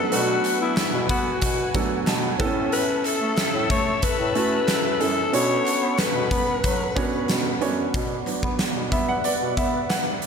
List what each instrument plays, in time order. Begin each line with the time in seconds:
Already playing: grand piano F#3 A3 B3 D4 G#4 A4, alto saxophone A4, analog synth pad B4 F#5
0.11 bass clarinet B2, grand piano F#3 A3 B3 D4 A4, alto saxophone F#4, analog synth pad G#5, closed hi-hat
0.45 clap, closed hi-hat
0.61 bass clarinet B3, alto saxophone E4
0.77 snare, clap, closed hi-hat, tambourine
0.93 bass clarinet B2
1.09 bass clarinet B3, alto saxophone F#4, kick, closed hi-hat
1.41 bass clarinet B2, kick, closed hi-hat
1.74 grand piano F#3 A3 B3 D4 A4, kick, closed hi-hat
2.07 bass clarinet B2, grand piano A5, snare, clap, closed hi-hat, tambourine
2.23 grand piano F#5
2.39 bass clarinet A2, grand piano B3 E4 A4 E5, analog synth pad A4 E5 A5 E6, kick, closed hi-hat
2.46 grand piano C#4
2.72 alto saxophone B4, closed hi-hat
3.05 alto saxophone A4, clap, closed hi-hat
3.21 bass clarinet A3
3.37 snare, clap, closed hi-hat, tambourine
3.54 bass clarinet A2
3.70 bass clarinet A3, alto saxophone C#5, kick, closed hi-hat
4.02 alto saxophone B4, kick, closed hi-hat
4.19 bass clarinet A2
4.35 bass clarinet A3, grand piano C#4 E4 F#4, closed hi-hat
4.68 snare, clap, closed hi-hat, tambourine
5.00 bass clarinet F#2, grand piano C#4 E4 A4, alto saxophone A4, closed hi-hat
5.33 bass clarinet B2, grand piano B3 C#4 D4 F#4 C#5, alto saxophone C#5, analog synth pad F#5 B5, closed hi-hat
5.66 clap, closed hi-hat
5.82 bass clarinet B3
5.98 alto saxophone B4, snare, clap, closed hi-hat, tambourine
6.14 bass clarinet B2
6.31 bass clarinet B3, kick, closed hi-hat
6.64 bass clarinet F#3, kick, closed hi-hat
6.96 grand piano B3 C#4 D4 F#4 C#5, kick, closed hi-hat
7.29 bass clarinet B2, snare, clap, closed hi-hat, tambourine
7.61 bass clarinet F#2, grand piano B3 C#4 D4 F#4 C#5, closed hi-hat
7.94 bass clarinet B2, analog synth pad B3 B4 D5 F#5, kick, closed hi-hat
8.26 grand piano F#3 B3 D4, clap, closed hi-hat
8.43 bass clarinet B3, kick
8.59 snare, clap, closed hi-hat
8.76 bass clarinet B2
8.92 bass clarinet B3, grand piano E5, kick, closed hi-hat
9.09 grand piano F#5
9.24 grand piano D5, closed hi-hat
9.41 bass clarinet B2
9.57 bass clarinet B3, grand piano E5, kick, closed hi-hat
9.90 grand piano F#5, snare, clap, closed hi-hat
10.22 bass clarinet E2, closed hi-hat